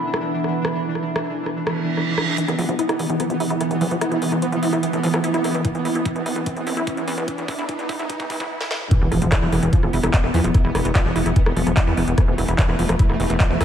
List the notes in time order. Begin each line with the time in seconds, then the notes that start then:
Already playing: E3 B3 D4 E4 E5 B5
0.14 cross-stick
0.44 cross-stick
0.65 cross-stick
0.95 cross-stick
1.16 cross-stick
1.46 cross-stick
1.57 reverse cymbal
1.67 cross-stick
1.97 cross-stick
2.18 cross-stick
2.38 E3 B3, closed hi-hat, riser
2.48 E1 E3, cross-stick, closed hi-hat
2.59 E1 F3, open hi-hat
2.69 E1 F3, closed hi-hat
2.79 E4, closed hi-hat
2.89 E1 E4, cross-stick, closed hi-hat
2.99 E1 E3, open hi-hat
3.10 E1 E3, closed hi-hat
3.20 F3, cross-stick, closed hi-hat
3.30 E1 F3, closed hi-hat
3.40 E1 E4, open hi-hat
3.50 E1 E4, closed hi-hat
3.61 E3, cross-stick, closed hi-hat
3.71 E1 E3, closed hi-hat
3.81 E2 F3, open hi-hat
3.91 E1 F3, closed hi-hat
4.01 E4, cross-stick, closed hi-hat
4.12 E1 E4, closed hi-hat
4.22 E1 E3, open hi-hat
4.32 E1 E3, cross-stick, closed hi-hat
4.42 F3, closed hi-hat
4.52 E1 F3, closed hi-hat
4.63 E1 E4, open hi-hat
4.73 E1 E4, cross-stick, closed hi-hat
4.83 E3, closed hi-hat
4.93 A1 E3, closed hi-hat
5.03 A1 F3, open hi-hat
5.14 A1 F3, cross-stick, closed hi-hat
5.24 E4, closed hi-hat
5.34 E1 E4, closed hi-hat
5.44 E1 E3, cross-stick, open hi-hat
5.54 E1 E3, closed hi-hat
5.65 E3, kick, closed hi-hat
5.75 E1 E3, closed hi-hat
5.85 E1 E4, open hi-hat
5.95 E4, closed hi-hat
6.05 E3, kick, closed hi-hat
6.16 E1 E3, closed hi-hat
6.26 E1 E3, open hi-hat
6.36 E1 E3, closed hi-hat
6.46 E3, kick, closed hi-hat
6.57 E1 E3, closed hi-hat
6.67 E1 E4, open hi-hat
6.77 E4, closed hi-hat
6.87 E3, kick, closed hi-hat
6.97 E3, closed hi-hat
7.08 E2 E3, open hi-hat
7.18 E3, closed hi-hat
7.28 E3, kick, closed hi-hat
7.38 E1 E3, closed hi-hat
7.48 E4, kick, open hi-hat
7.59 E1 E4, closed hi-hat
7.69 E3, kick, closed hi-hat
7.79 E3, closed hi-hat
7.89 E4, kick, open hi-hat
7.99 E4, closed hi-hat
8.10 E3, kick, closed hi-hat
8.20 E3, kick, closed hi-hat
8.30 E3, kick, open hi-hat
8.40 E3, kick, closed hi-hat
8.61 snare
8.71 snare
8.81 mid tom
8.91 E3 B3, kick, closed hi-hat, impact
9.01 E1 E3
9.12 E1 F3 E4, cross-stick, open hi-hat
9.22 E1 F3, closed hi-hat
9.32 E4, kick, cross-stick, clap, closed hi-hat
9.42 E1 E4
9.52 E1 E3, cross-stick, open hi-hat
9.63 E1 E3, closed hi-hat
9.73 F3, kick, closed hi-hat
9.83 E1 F3, cross-stick
9.89 E1 E4 E5, open hi-hat
10.03 E1 E4, cross-stick, closed hi-hat
10.14 E3 B5, kick, clap, closed hi-hat
10.24 E1 E3, cross-stick
10.34 E2 F3, open hi-hat
10.44 E1 F3, closed hi-hat
10.54 E4, kick, cross-stick, closed hi-hat
10.65 E1 E4
10.75 E1 E3, cross-stick, open hi-hat
10.85 E1 E3, closed hi-hat
10.95 F3, kick, cross-stick, clap, closed hi-hat
11.05 E1 F3
11.16 E1 E4, open hi-hat
11.26 E1 E4, cross-stick, closed hi-hat
11.36 E3, kick, closed hi-hat
11.46 E1 E3, cross-stick
11.57 E1 F3, open hi-hat
11.67 E1 F3, cross-stick, closed hi-hat
11.77 E4, kick, clap, closed hi-hat
11.87 E2 E4
11.97 E1 E3, cross-stick, open hi-hat
12.08 E1 E3, closed hi-hat
12.18 F3 A3, kick, cross-stick, closed hi-hat
12.28 E1 F3
12.38 E1 E4, cross-stick, open hi-hat
12.48 E1 E4, closed hi-hat
12.59 E3, kick, clap, closed hi-hat
12.69 E1 E3, cross-stick
12.79 E1 F3, open hi-hat
12.89 E1 F3, cross-stick, closed hi-hat
12.99 E4, kick, closed hi-hat
13.10 E1 E4, cross-stick
13.20 E1 E3, open hi-hat
13.30 E1 E3, closed hi-hat
13.40 F3, kick, cross-stick, clap, closed hi-hat
13.50 E1 F3
13.61 E2 E4, cross-stick, open hi-hat